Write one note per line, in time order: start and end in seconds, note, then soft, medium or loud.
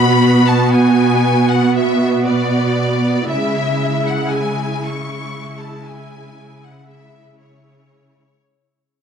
0.00 3.25 B2 soft
0.00 3.25 B3 soft
0.00 3.25 F#4 soft
0.00 0.45 B5 medium
0.46 0.72 A5 medium
0.73 1.48 G#5 medium
1.49 1.75 F#5 soft
1.75 2.25 E5 soft
2.26 3.26 D5 medium
3.29 8.18 C#3 soft
3.29 8.22 G#3 soft
3.29 8.22 E4 soft
3.29 4.04 E5 medium
4.06 4.32 F#5 soft
4.31 4.83 G#5 medium
4.84 5.60 C#6 medium
5.59 5.85 A5 medium
5.86 6.62 G#5 medium
6.63 6.88 F#5 soft
6.88 7.38 E5 medium
7.41 8.40 C#5 soft